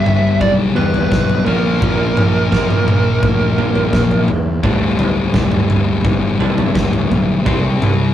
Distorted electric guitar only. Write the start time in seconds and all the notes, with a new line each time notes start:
Already playing: G2 D3 G3 B3 D4 G4
1.46 A#2 F3 A#3 D4 F4 A#4
4.63 D2 A2 D3 G3
7.44 C3 G3 C4 E4 G4 C5